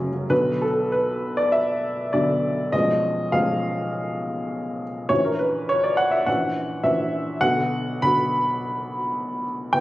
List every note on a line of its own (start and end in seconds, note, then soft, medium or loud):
0.00 0.26 F#1 medium
0.00 0.26 F#2 medium
0.00 0.24 C#3 soft
0.00 0.13 F#3 soft
0.00 0.33 C#4 soft
0.00 0.33 F#4 soft
0.13 0.29 F#3 soft
0.30 2.09 B1 soft
0.30 2.09 D3 soft
0.30 2.10 F#3 soft
0.30 2.10 B3 soft
0.30 0.62 B4 medium
0.62 0.93 A4 medium
0.92 1.37 B4 medium
1.37 1.52 D5 medium
1.52 2.13 E5 medium
2.13 2.71 B1 soft
2.13 2.71 D3 soft
2.13 2.72 F#3 soft
2.13 2.72 B3 soft
2.13 2.73 D5 medium
2.72 3.30 B1 soft
2.72 3.30 F3 soft
2.72 3.30 G#3 soft
2.72 3.31 C#4 soft
2.72 3.32 D#5 medium
3.32 5.06 B1 soft
3.32 5.06 F3 soft
3.32 5.06 G#3 soft
3.32 5.07 C#4 soft
3.32 4.81 F5 medium
5.09 6.23 A#1 soft
5.09 6.23 E3 soft
5.09 6.24 C#4 soft
5.09 6.24 F#4 soft
5.09 5.24 C#5 medium
5.25 5.39 A#4 medium
5.39 5.68 B4 medium
5.69 5.83 C#5 medium
5.84 5.98 D5 medium
5.97 6.12 F#5 medium
6.11 6.26 E5 medium
6.26 6.82 A#1 soft
6.26 6.82 E3 soft
6.26 6.83 C#4 soft
6.26 6.83 F#4 soft
6.26 6.84 F#5 medium
6.84 7.39 A#1 soft
6.84 7.39 E3 soft
6.84 7.40 C#4 soft
6.84 7.39 F#4 soft
6.84 7.41 E5 medium
7.41 8.01 B1 medium
7.41 8.02 D3 soft
7.41 8.02 B3 soft
7.41 8.02 F#4 soft
7.41 8.04 F#5 loud
8.02 9.69 B1 medium
8.02 9.69 D3 soft
8.02 9.69 B3 soft
8.02 9.69 F#4 soft
8.02 9.44 B5 loud
9.73 9.80 B1 medium
9.73 9.80 E3 soft
9.73 9.80 B3 soft
9.73 9.80 G4 soft
9.73 9.80 G5 loud